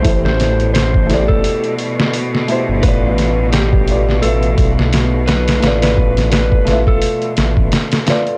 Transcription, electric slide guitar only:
0.00 0.19 C5 medium
0.25 0.70 C5 medium
0.74 1.23 C5 loud
1.28 1.74 A4 medium
2.83 3.47 B4 loud
3.53 4.17 G4 loud
4.22 4.71 A4 loud
5.28 5.77 B4 medium
5.82 6.28 B4 medium
6.32 6.81 B4 medium
6.88 7.33 A4 loud

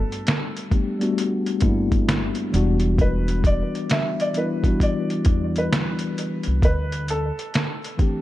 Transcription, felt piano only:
0.00 2.05 A4 medium
3.01 3.42 B4 medium
3.47 3.87 D5 medium
3.92 4.17 E5 medium
4.21 4.35 D5 medium
4.38 4.78 B4 medium
4.83 5.52 D5 medium
5.58 6.60 B4 medium
6.65 7.05 B4 medium
7.10 8.21 A4 medium

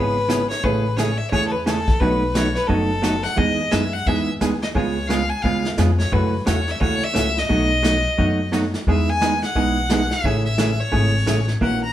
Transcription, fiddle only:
0.00 0.49 B4 loud
0.50 0.65 C#5 medium
0.64 0.98 B4 medium
0.96 1.19 C#5 medium
1.17 1.30 E5 medium
1.31 1.46 C#5 loud
1.48 1.53 A4 medium
1.52 1.65 B4 medium
1.66 2.02 A4 medium
2.00 2.32 B4 medium
2.32 2.36 B4 medium
2.32 2.57 C#5 medium
2.56 2.69 B4 medium
2.67 3.25 A4 loud
3.23 3.39 F#5 medium
3.37 3.73 D#5 loud
3.72 3.95 E5 medium
3.93 4.08 F#5 loud
4.07 4.28 E5 medium
4.62 4.68 D#5 medium
4.75 5.09 C#5 medium
5.08 5.31 F5 medium
5.29 5.43 G#5 medium
5.42 5.64 F5 medium
5.99 6.14 C#5 medium
6.13 6.46 B4 medium
6.47 6.72 C#5 medium
6.71 6.81 E5 loud
6.82 7.05 C#5 loud
7.04 7.40 E5 loud
7.38 8.53 D#5 loud
8.89 9.11 E5 medium
9.10 9.43 G#5 loud
9.44 10.14 F#5 loud
10.13 10.45 E5 loud
10.45 10.82 E5 medium
10.80 11.49 C#5 loud
11.62 11.82 F#5 medium
11.83 11.93 A#5 loud

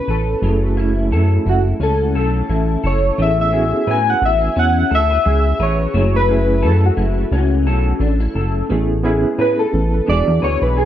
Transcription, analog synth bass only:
0.08 0.36 A1 medium
0.42 1.12 F#1 medium
1.11 1.39 F#2 medium
1.46 1.73 F#1 loud
1.80 2.17 C#2 medium
2.15 2.43 B1 medium
2.50 2.77 A1 medium
2.84 3.12 F#1 medium
3.18 3.74 A1 loud
3.87 4.15 A2 medium
4.22 4.50 A1 medium
4.57 4.84 E2 loud
4.91 5.19 D2 medium
5.26 5.53 C#2 loud
5.60 5.87 A1 medium
5.94 6.64 F#1 loud
6.63 6.91 F#2 loud
6.97 7.25 F#1 medium
7.32 7.67 C#2 medium
7.66 7.94 B1 loud
8.00 8.28 A1 medium
8.35 8.63 F#1 medium
8.70 9.26 A1 loud
9.39 9.66 A2 loud
9.73 10.01 A1 loud
10.08 10.23 E1 loud
10.27 10.40 E2 loud
10.43 10.58 D2 loud
10.62 10.85 B1 medium

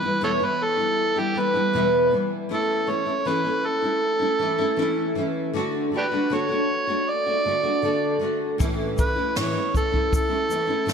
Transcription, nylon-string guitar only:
0.02 0.21 E3 soft
0.02 0.21 G3 soft
0.02 0.22 B3 soft
0.02 0.22 E4 soft
0.21 0.41 E2 medium
0.21 0.41 B2 medium
0.21 0.41 E3 medium
0.21 0.41 G3 medium
0.21 0.40 B3 medium
0.21 0.39 E4 medium
0.40 0.79 E3 soft
0.40 0.78 G3 soft
0.40 0.78 B3 soft
0.40 0.76 E4 soft
0.77 1.18 E3 soft
0.77 1.17 G3 soft
0.77 1.16 B3 soft
0.77 1.15 E4 soft
1.16 1.34 E3 soft
1.16 1.35 G3 soft
1.16 1.36 B3 soft
1.16 1.36 E4 soft
1.35 1.55 E3 medium
1.35 1.55 G3 medium
1.35 1.54 B3 medium
1.35 1.53 E4 medium
1.54 1.73 E3 soft
1.54 1.74 G3 soft
1.54 1.74 B3 medium
1.54 1.74 E4 medium
1.73 2.12 E2 medium
1.73 2.12 B2 medium
1.73 2.10 E3 medium
1.73 2.11 G3 medium
1.73 2.12 B3 medium
1.73 2.13 E4 medium
2.11 2.48 E3 medium
2.11 2.50 G3 medium
2.11 2.50 B3 soft
2.11 2.50 E4 medium
2.49 2.86 E3 medium
2.49 2.88 A3 medium
2.49 2.88 C#4 medium
2.49 2.89 E4 medium
2.87 3.07 E3 medium
2.87 3.08 A3 medium
2.87 3.07 C#4 medium
2.87 3.05 E4 medium
3.06 3.25 A3 soft
3.06 3.26 C#4 soft
3.06 3.26 E4 soft
3.25 3.45 E3 medium
3.25 3.46 A3 medium
3.25 3.45 C#4 medium
3.25 3.43 E4 medium
3.44 3.84 A3 soft
3.44 3.83 C#4 soft
3.44 3.81 E4 soft
3.82 4.22 A3 soft
3.82 4.20 C#4 soft
3.82 4.18 E4 soft
4.19 4.39 A3 soft
4.19 4.41 C#4 soft
4.19 4.40 E4 soft
4.39 4.59 E3 medium
4.39 4.60 A3 medium
4.39 4.59 C#4 medium
4.39 4.57 E4 medium
4.58 4.76 A3 soft
4.58 4.77 C#4 medium
4.58 4.78 E4 medium
4.76 5.14 E3 medium
4.76 5.15 A3 medium
4.76 5.16 C#4 medium
4.76 5.17 E4 medium
5.15 5.53 E3 medium
5.15 5.53 A3 medium
5.15 5.55 C#4 medium
5.15 5.56 E4 medium
5.53 5.91 D3 medium
5.53 5.92 A3 medium
5.53 5.93 D4 medium
5.53 5.94 F#4 medium
5.92 6.12 D3 medium
5.92 6.12 A3 medium
5.92 6.12 D4 medium
5.92 6.10 F#4 medium
6.12 6.30 A3 soft
6.12 6.30 D4 soft
6.12 6.31 F#4 soft
6.30 6.50 D3 medium
6.30 6.50 A3 medium
6.30 6.49 D4 medium
6.30 6.48 F#4 medium
6.49 6.89 A3 soft
6.49 6.88 D4 soft
6.49 6.86 F#4 soft
6.87 7.28 A3 soft
6.87 7.27 D4 soft
6.87 7.25 F#4 soft
7.26 7.45 A3 soft
7.26 7.46 D4 soft
7.26 7.46 F#4 soft
7.45 7.64 D3 soft
7.45 7.65 A3 medium
7.45 7.64 D4 medium
7.45 7.62 F#4 medium
7.63 7.82 A3 soft
7.63 7.83 D4 soft
7.63 7.83 F#4 soft
7.82 8.18 D3 medium
7.82 8.19 A3 medium
7.82 8.20 D4 medium
7.82 8.22 F#4 medium
8.19 8.59 D3 medium
8.19 8.58 A3 medium
8.19 8.60 D4 medium
8.19 8.60 F#4 medium
8.58 8.97 A2 medium
8.58 8.95 E3 medium
8.58 8.96 A3 medium
8.58 8.97 C#4 medium
8.58 8.98 E4 medium
8.96 9.16 E3 medium
8.96 9.17 A3 medium
8.96 9.16 C#4 medium
8.96 9.15 E4 medium
9.16 9.35 A3 soft
9.16 9.36 C#4 soft
9.16 9.35 E4 soft
9.35 9.55 A2 medium
9.35 9.55 E3 medium
9.35 9.55 A3 medium
9.35 9.55 C#4 medium
9.35 9.53 E4 medium
9.54 9.94 A3 soft
9.54 9.92 C#4 soft
9.54 9.91 E4 soft
9.92 10.32 A3 soft
9.92 10.30 C#4 soft
9.92 10.28 E4 medium
10.29 10.49 A3 soft
10.29 10.50 C#4 soft
10.29 10.49 E4 soft
10.49 10.68 E3 soft
10.49 10.69 A3 medium
10.49 10.68 C#4 medium
10.49 10.66 E4 medium
10.67 10.86 A3 soft
10.67 10.87 C#4 soft
10.67 10.87 E4 medium
10.86 10.93 A2 medium
10.86 10.93 E3 medium
10.86 10.93 A3 medium
10.86 10.93 C#4 medium
10.86 10.93 E4 medium

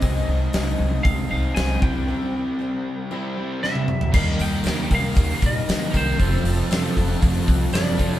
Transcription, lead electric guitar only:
0.00 1.03 D#5 medium
1.03 1.28 F5 loud
1.31 1.58 F5 medium
1.55 1.82 G#5 loud
1.83 3.58 G5 medium
3.63 4.10 E5 loud
4.14 4.21 F5 loud
4.41 4.93 G5 loud
4.95 5.45 F5 loud
5.46 5.97 D#5 medium
5.97 7.45 C5 medium
7.74 8.19 D5 loud

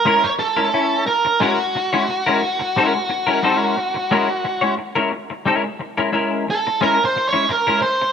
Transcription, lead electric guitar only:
0.00 0.25 A#4 loud
0.24 0.29 C#5 medium
0.39 1.03 A4 loud
1.07 1.41 A#4 medium
1.40 4.74 F#4 medium
6.51 6.81 A4 medium
6.82 7.05 A#4 medium
7.05 7.28 C5 loud
7.28 7.50 C#5 medium
7.49 7.82 A#4 medium
7.82 8.12 C5 medium

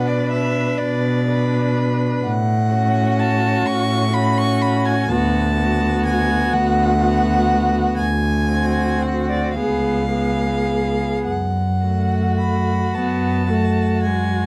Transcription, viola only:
0.00 1.25 D4 soft
1.29 2.23 D4 soft
2.74 4.11 C#4 soft
4.13 5.08 C#4 soft
5.10 5.57 B3 soft
5.60 6.99 B3 soft
7.01 7.97 B3 soft
8.50 9.55 C4 soft
9.58 10.11 B3 soft
10.13 11.26 B3 soft
11.85 12.82 A3 soft
12.96 13.51 B3 soft
13.50 14.07 A3 soft
14.05 14.46 G#3 soft

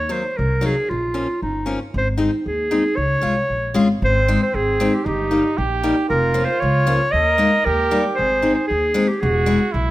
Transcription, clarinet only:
0.00 0.13 C#5 medium
0.11 0.39 C5 medium
0.37 0.67 A#4 medium
0.66 0.91 G#4 medium
0.90 1.41 F4 medium
1.42 1.78 D#4 medium
1.98 2.09 C5 medium
2.47 2.98 G#4 medium
2.97 3.76 C#5 loud
4.05 4.40 C5 loud
4.43 4.57 C5 medium
4.55 4.96 G#4 medium
4.95 5.07 G4 medium
5.08 5.55 G4 medium
6.10 6.47 A#4 loud
6.45 6.61 C5 medium
6.60 7.13 C#5 medium
7.12 7.67 D#5 loud
7.65 8.05 A#4 medium
8.15 8.53 C5 medium
8.55 8.67 C5 medium
8.68 9.10 G#4 medium
9.08 9.23 G4 medium
9.21 9.73 G#4 medium

